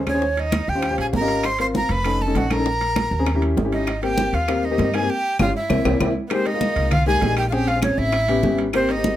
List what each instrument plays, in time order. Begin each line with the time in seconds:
Already playing: upright bass D#2
0.06 grand piano C#4 G#4 C5, fiddle C#4, flute C#5, high bongo, high conga, high timbale, claves
0.14 grand piano C#4 G#4 C5
0.22 high bongo, high conga
0.37 fiddle D#4, flute D#5, high bongo, high conga, high timbale
0.52 high bongo, high conga, high timbale, low timbale, claves
0.68 upright bass D#2, fiddle G4, flute G5, high bongo
0.75 grand piano C#4 F4 G4 C5
0.82 high bongo, high conga, high timbale, claves
0.91 grand piano C#4 F4 G4 C5
0.98 upright bass A#1, fiddle G#4, flute G#5, high conga, high timbale
1.13 upright bass G#1, fiddle A#4, flute A#5, high bongo, low bongo, high conga, low timbale
1.21 grand piano C#4 F4 G4 D#5
1.28 high bongo, high timbale
1.43 fiddle C5, flute C6, high bongo, high conga, high timbale, claves
1.59 grand piano C4 F4 A#4, fiddle C5, flute C6, high bongo, high conga, high timbale
1.74 fiddle A#4, flute A#5, high bongo, high conga, low timbale
1.89 upright bass F1, fiddle B4, flute B5, high bongo, high conga, high timbale
2.04 grand piano C#4 D#4 A4, high bongo, high conga, high timbale, claves
2.21 fiddle A4, flute A5, high conga
2.27 grand piano C#4 D#4 A4
2.35 upright bass A#1, fiddle F#4, flute F#5, high bongo, low bongo, high conga, high timbale, low timbale
2.50 grand piano C#4 D#4 A4, fiddle A#4, flute A#5, high bongo, high conga, high timbale, claves
2.58 grand piano C#4 D#4 A4
2.66 high bongo, high conga
2.81 high bongo, high conga, high timbale
2.96 high bongo, high conga, high timbale, low timbale, claves
3.11 upright bass D#2, high bongo
3.19 grand piano C4 C#4 G#4
3.26 high bongo, high conga, high timbale, claves
3.35 grand piano C#4 E4 G4
3.42 high conga, high timbale
3.57 upright bass G#1, high bongo, low bongo, high conga, low timbale
3.65 grand piano C#4 E4 G4
3.72 fiddle D#4, flute D#5, high bongo, high timbale
3.87 high bongo, high conga, high timbale, claves
4.02 grand piano A#3 C4 G4, fiddle G4, flute G5, high bongo, high conga, high timbale
4.18 high bongo, high conga, low timbale
4.33 upright bass D#2, fiddle F4, flute F5, high bongo, high conga, high timbale
4.48 grand piano A#3 C4 G4, high bongo, high conga, high timbale, claves
4.63 fiddle D#4, flute D#5, high conga
4.71 grand piano A#3 C4 G4
4.78 upright bass G2, high bongo, low bongo, high conga, high timbale, low timbale
4.94 grand piano A#3 C4 D#4, fiddle G#4, flute G#5, high bongo, high timbale, claves
5.01 grand piano A#3 C4 G4
5.10 fiddle G4, flute G5
5.39 upright bass G1, grand piano C#4 F4 G4, fiddle F4, flute F5, low bongo, high conga, high timbale, claves
5.56 fiddle E4, flute E5
5.70 upright bass C2, grand piano A#3 C4 E4, low bongo, high conga, high timbale, claves
5.85 upright bass C2, grand piano A#3 C4 E4, low bongo, high conga, high timbale, claves
6.00 upright bass C2, grand piano A#3 C4 E4, low bongo, high conga, high timbale, claves
6.27 grand piano G#3 A#3 D#4 G4, fiddle B3 C4, flute B4, high bongo, high timbale, claves
6.31 flute C5, high conga
6.45 fiddle D#4, flute D#5, high bongo, high conga, high timbale
6.54 grand piano G#3 A#3 D#4 F4
6.61 high bongo, high conga, low timbale
6.76 upright bass C2, high bongo, high conga, high timbale
6.91 fiddle F4, flute F5, high bongo, high conga, low conga, high timbale, claves
7.06 grand piano G#3 A#3 D#4 G4, fiddle G#4, flute G#5, high conga
7.21 upright bass A#1, grand piano G#3 A#3 D#4 G4, high bongo, low bongo, high conga, high timbale, low timbale
7.37 fiddle G4, flute G5, high bongo, high timbale, claves
7.48 grand piano C#4, fiddle F4 G4, flute F5, high conga
7.52 grand piano C4 G#4, flute G5, high bongo
7.67 fiddle F4, flute F5, high bongo, high conga, high timbale
7.76 grand piano C4 C#4 G#4
7.82 fiddle C#4, flute C#5, high bongo, high conga, high timbale, low timbale, claves
7.98 upright bass A1, fiddle E4, flute E5, high bongo
8.12 high bongo, high conga, high timbale, claves
8.28 grand piano B3 C#4 G4, high conga, high timbale
8.43 upright bass G#1, grand piano B3 C#4 G4, high bongo, low bongo, high conga, low timbale
8.58 high bongo, high timbale
8.73 grand piano A#3 C4 G4, fiddle C4, flute C5, high bongo, high conga, high timbale, claves
8.89 fiddle D#4, flute D#5, high bongo, high conga, high timbale
8.97 grand piano A#3 C4 G4
9.04 high bongo, high conga, low timbale